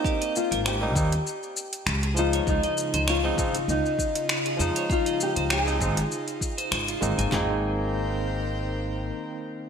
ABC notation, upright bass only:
X:1
M:4/4
L:1/16
Q:"Swing 16ths" 1/4=99
K:Ab
V:1 name="Upright bass" clef=bass
z3 A,,,3 E,, z4 z D,,3 z | D,, z2 D,,3 A,,, z D,, z4 z F,, z | z3 D,,3 A,,, z4 z A,,, z A,,, A,,, | A,,,12 z4 |]